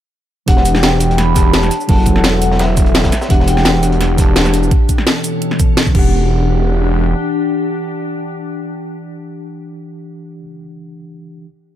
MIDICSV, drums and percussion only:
0, 0, Header, 1, 2, 480
1, 0, Start_track
1, 0, Tempo, 352941
1, 650, Time_signature, 4, 2, 24, 8
1, 15991, End_track
2, 0, Start_track
2, 0, Title_t, "Drums"
2, 649, Note_on_c, 9, 42, 85
2, 651, Note_on_c, 9, 36, 121
2, 774, Note_on_c, 9, 38, 48
2, 785, Note_off_c, 9, 42, 0
2, 787, Note_off_c, 9, 36, 0
2, 890, Note_on_c, 9, 42, 93
2, 890, Note_on_c, 9, 69, 61
2, 893, Note_off_c, 9, 42, 0
2, 893, Note_on_c, 9, 42, 66
2, 910, Note_off_c, 9, 38, 0
2, 1015, Note_on_c, 9, 38, 36
2, 1015, Note_on_c, 9, 40, 48
2, 1026, Note_off_c, 9, 69, 0
2, 1029, Note_off_c, 9, 42, 0
2, 1029, Note_on_c, 9, 42, 48
2, 1128, Note_off_c, 9, 42, 0
2, 1128, Note_on_c, 9, 42, 93
2, 1129, Note_off_c, 9, 38, 0
2, 1129, Note_off_c, 9, 42, 0
2, 1129, Note_on_c, 9, 38, 121
2, 1129, Note_on_c, 9, 42, 81
2, 1136, Note_off_c, 9, 38, 0
2, 1136, Note_on_c, 9, 38, 126
2, 1151, Note_off_c, 9, 40, 0
2, 1265, Note_off_c, 9, 42, 0
2, 1272, Note_off_c, 9, 38, 0
2, 1364, Note_on_c, 9, 42, 70
2, 1368, Note_off_c, 9, 42, 0
2, 1368, Note_on_c, 9, 42, 99
2, 1368, Note_on_c, 9, 69, 60
2, 1504, Note_off_c, 9, 42, 0
2, 1504, Note_off_c, 9, 69, 0
2, 1508, Note_on_c, 9, 42, 44
2, 1606, Note_off_c, 9, 42, 0
2, 1606, Note_on_c, 9, 42, 94
2, 1608, Note_off_c, 9, 42, 0
2, 1608, Note_on_c, 9, 40, 54
2, 1608, Note_on_c, 9, 42, 86
2, 1744, Note_off_c, 9, 40, 0
2, 1744, Note_off_c, 9, 42, 0
2, 1848, Note_on_c, 9, 42, 100
2, 1848, Note_on_c, 9, 69, 62
2, 1852, Note_off_c, 9, 42, 0
2, 1852, Note_on_c, 9, 36, 104
2, 1852, Note_on_c, 9, 42, 72
2, 1984, Note_off_c, 9, 69, 0
2, 1988, Note_off_c, 9, 36, 0
2, 1988, Note_off_c, 9, 42, 0
2, 2087, Note_on_c, 9, 38, 122
2, 2087, Note_on_c, 9, 42, 83
2, 2090, Note_off_c, 9, 42, 0
2, 2090, Note_on_c, 9, 42, 100
2, 2093, Note_off_c, 9, 38, 0
2, 2093, Note_on_c, 9, 38, 113
2, 2212, Note_off_c, 9, 42, 0
2, 2212, Note_on_c, 9, 42, 43
2, 2216, Note_on_c, 9, 40, 48
2, 2216, Note_on_c, 9, 69, 27
2, 2229, Note_off_c, 9, 38, 0
2, 2327, Note_off_c, 9, 42, 0
2, 2327, Note_off_c, 9, 69, 0
2, 2327, Note_on_c, 9, 42, 98
2, 2327, Note_on_c, 9, 69, 58
2, 2335, Note_off_c, 9, 42, 0
2, 2335, Note_on_c, 9, 42, 70
2, 2352, Note_off_c, 9, 40, 0
2, 2454, Note_off_c, 9, 69, 0
2, 2454, Note_on_c, 9, 69, 27
2, 2471, Note_off_c, 9, 42, 0
2, 2566, Note_on_c, 9, 42, 81
2, 2571, Note_on_c, 9, 36, 118
2, 2577, Note_on_c, 9, 46, 73
2, 2590, Note_off_c, 9, 69, 0
2, 2702, Note_off_c, 9, 42, 0
2, 2707, Note_off_c, 9, 36, 0
2, 2713, Note_off_c, 9, 46, 0
2, 2797, Note_on_c, 9, 42, 71
2, 2807, Note_off_c, 9, 42, 0
2, 2807, Note_on_c, 9, 42, 93
2, 2807, Note_on_c, 9, 69, 57
2, 2811, Note_on_c, 9, 36, 65
2, 2934, Note_on_c, 9, 40, 47
2, 2943, Note_off_c, 9, 42, 0
2, 2943, Note_off_c, 9, 69, 0
2, 2947, Note_off_c, 9, 36, 0
2, 3043, Note_on_c, 9, 38, 118
2, 3046, Note_off_c, 9, 38, 0
2, 3046, Note_on_c, 9, 38, 126
2, 3046, Note_on_c, 9, 42, 80
2, 3054, Note_off_c, 9, 42, 0
2, 3054, Note_on_c, 9, 42, 89
2, 3070, Note_off_c, 9, 40, 0
2, 3182, Note_off_c, 9, 38, 0
2, 3190, Note_off_c, 9, 42, 0
2, 3287, Note_on_c, 9, 42, 92
2, 3287, Note_on_c, 9, 69, 57
2, 3291, Note_off_c, 9, 42, 0
2, 3291, Note_on_c, 9, 42, 65
2, 3420, Note_on_c, 9, 38, 49
2, 3423, Note_off_c, 9, 69, 0
2, 3427, Note_off_c, 9, 42, 0
2, 3528, Note_on_c, 9, 42, 86
2, 3530, Note_off_c, 9, 38, 0
2, 3530, Note_on_c, 9, 38, 119
2, 3542, Note_off_c, 9, 42, 0
2, 3542, Note_on_c, 9, 42, 79
2, 3666, Note_off_c, 9, 38, 0
2, 3678, Note_off_c, 9, 42, 0
2, 3768, Note_on_c, 9, 42, 94
2, 3768, Note_on_c, 9, 69, 58
2, 3770, Note_on_c, 9, 36, 107
2, 3772, Note_off_c, 9, 42, 0
2, 3772, Note_on_c, 9, 42, 61
2, 3891, Note_off_c, 9, 42, 0
2, 3891, Note_on_c, 9, 42, 37
2, 3904, Note_off_c, 9, 69, 0
2, 3906, Note_off_c, 9, 36, 0
2, 4008, Note_off_c, 9, 42, 0
2, 4008, Note_on_c, 9, 38, 127
2, 4008, Note_on_c, 9, 42, 81
2, 4009, Note_off_c, 9, 38, 0
2, 4009, Note_off_c, 9, 42, 0
2, 4009, Note_on_c, 9, 38, 117
2, 4009, Note_on_c, 9, 42, 83
2, 4130, Note_off_c, 9, 38, 0
2, 4130, Note_on_c, 9, 38, 98
2, 4136, Note_on_c, 9, 69, 28
2, 4138, Note_on_c, 9, 36, 66
2, 4145, Note_off_c, 9, 42, 0
2, 4145, Note_on_c, 9, 42, 77
2, 4247, Note_off_c, 9, 42, 0
2, 4247, Note_on_c, 9, 42, 71
2, 4248, Note_off_c, 9, 42, 0
2, 4248, Note_off_c, 9, 69, 0
2, 4248, Note_on_c, 9, 40, 59
2, 4248, Note_on_c, 9, 42, 96
2, 4248, Note_on_c, 9, 69, 58
2, 4250, Note_off_c, 9, 38, 0
2, 4250, Note_on_c, 9, 38, 50
2, 4274, Note_off_c, 9, 36, 0
2, 4372, Note_off_c, 9, 38, 0
2, 4372, Note_on_c, 9, 38, 61
2, 4376, Note_off_c, 9, 69, 0
2, 4376, Note_on_c, 9, 69, 27
2, 4384, Note_off_c, 9, 40, 0
2, 4384, Note_off_c, 9, 42, 0
2, 4488, Note_on_c, 9, 42, 75
2, 4491, Note_on_c, 9, 36, 121
2, 4497, Note_off_c, 9, 42, 0
2, 4497, Note_on_c, 9, 42, 82
2, 4508, Note_off_c, 9, 38, 0
2, 4512, Note_off_c, 9, 69, 0
2, 4627, Note_off_c, 9, 36, 0
2, 4628, Note_on_c, 9, 38, 48
2, 4633, Note_off_c, 9, 42, 0
2, 4726, Note_on_c, 9, 42, 72
2, 4729, Note_off_c, 9, 42, 0
2, 4729, Note_on_c, 9, 42, 90
2, 4729, Note_on_c, 9, 69, 55
2, 4764, Note_off_c, 9, 38, 0
2, 4856, Note_on_c, 9, 38, 38
2, 4856, Note_on_c, 9, 40, 46
2, 4862, Note_off_c, 9, 42, 0
2, 4862, Note_on_c, 9, 42, 41
2, 4865, Note_off_c, 9, 69, 0
2, 4964, Note_off_c, 9, 38, 0
2, 4964, Note_on_c, 9, 38, 116
2, 4966, Note_off_c, 9, 42, 0
2, 4966, Note_on_c, 9, 42, 78
2, 4968, Note_off_c, 9, 38, 0
2, 4968, Note_off_c, 9, 42, 0
2, 4968, Note_on_c, 9, 38, 123
2, 4968, Note_on_c, 9, 42, 79
2, 4992, Note_off_c, 9, 40, 0
2, 5104, Note_off_c, 9, 38, 0
2, 5104, Note_off_c, 9, 42, 0
2, 5207, Note_on_c, 9, 42, 73
2, 5209, Note_off_c, 9, 42, 0
2, 5209, Note_on_c, 9, 42, 88
2, 5209, Note_on_c, 9, 69, 54
2, 5336, Note_off_c, 9, 42, 0
2, 5336, Note_on_c, 9, 42, 43
2, 5345, Note_off_c, 9, 69, 0
2, 5448, Note_off_c, 9, 42, 0
2, 5448, Note_on_c, 9, 40, 52
2, 5448, Note_on_c, 9, 42, 83
2, 5458, Note_off_c, 9, 42, 0
2, 5458, Note_on_c, 9, 42, 97
2, 5584, Note_off_c, 9, 40, 0
2, 5594, Note_off_c, 9, 42, 0
2, 5689, Note_on_c, 9, 42, 92
2, 5689, Note_on_c, 9, 69, 59
2, 5691, Note_on_c, 9, 36, 109
2, 5700, Note_off_c, 9, 42, 0
2, 5700, Note_on_c, 9, 42, 67
2, 5825, Note_off_c, 9, 69, 0
2, 5827, Note_off_c, 9, 36, 0
2, 5836, Note_off_c, 9, 42, 0
2, 5926, Note_on_c, 9, 42, 92
2, 5929, Note_off_c, 9, 42, 0
2, 5929, Note_on_c, 9, 38, 127
2, 5929, Note_on_c, 9, 42, 80
2, 5938, Note_off_c, 9, 38, 0
2, 5938, Note_on_c, 9, 38, 114
2, 6057, Note_on_c, 9, 40, 51
2, 6057, Note_on_c, 9, 69, 27
2, 6064, Note_off_c, 9, 42, 0
2, 6064, Note_on_c, 9, 42, 45
2, 6074, Note_off_c, 9, 38, 0
2, 6169, Note_off_c, 9, 42, 0
2, 6169, Note_on_c, 9, 42, 72
2, 6170, Note_off_c, 9, 42, 0
2, 6170, Note_off_c, 9, 69, 0
2, 6170, Note_on_c, 9, 42, 95
2, 6170, Note_on_c, 9, 69, 58
2, 6193, Note_off_c, 9, 40, 0
2, 6298, Note_off_c, 9, 69, 0
2, 6298, Note_on_c, 9, 69, 26
2, 6306, Note_off_c, 9, 42, 0
2, 6411, Note_on_c, 9, 36, 123
2, 6411, Note_on_c, 9, 42, 76
2, 6434, Note_off_c, 9, 69, 0
2, 6547, Note_off_c, 9, 36, 0
2, 6547, Note_off_c, 9, 42, 0
2, 6651, Note_on_c, 9, 36, 63
2, 6651, Note_on_c, 9, 42, 91
2, 6651, Note_on_c, 9, 69, 60
2, 6777, Note_on_c, 9, 40, 47
2, 6787, Note_off_c, 9, 36, 0
2, 6787, Note_off_c, 9, 42, 0
2, 6787, Note_off_c, 9, 69, 0
2, 6890, Note_on_c, 9, 38, 126
2, 6890, Note_on_c, 9, 42, 74
2, 6913, Note_off_c, 9, 40, 0
2, 7026, Note_off_c, 9, 38, 0
2, 7026, Note_off_c, 9, 42, 0
2, 7128, Note_on_c, 9, 42, 86
2, 7128, Note_on_c, 9, 69, 57
2, 7264, Note_off_c, 9, 42, 0
2, 7264, Note_off_c, 9, 69, 0
2, 7368, Note_on_c, 9, 42, 80
2, 7497, Note_on_c, 9, 40, 36
2, 7504, Note_off_c, 9, 42, 0
2, 7610, Note_on_c, 9, 42, 88
2, 7610, Note_on_c, 9, 69, 59
2, 7611, Note_on_c, 9, 36, 107
2, 7633, Note_off_c, 9, 40, 0
2, 7746, Note_off_c, 9, 42, 0
2, 7746, Note_off_c, 9, 69, 0
2, 7747, Note_off_c, 9, 36, 0
2, 7848, Note_on_c, 9, 38, 125
2, 7848, Note_on_c, 9, 42, 78
2, 7976, Note_on_c, 9, 69, 28
2, 7978, Note_on_c, 9, 36, 66
2, 7984, Note_off_c, 9, 38, 0
2, 7984, Note_off_c, 9, 42, 0
2, 8089, Note_on_c, 9, 49, 86
2, 8090, Note_off_c, 9, 36, 0
2, 8090, Note_on_c, 9, 36, 113
2, 8112, Note_off_c, 9, 69, 0
2, 8225, Note_off_c, 9, 49, 0
2, 8226, Note_off_c, 9, 36, 0
2, 15991, End_track
0, 0, End_of_file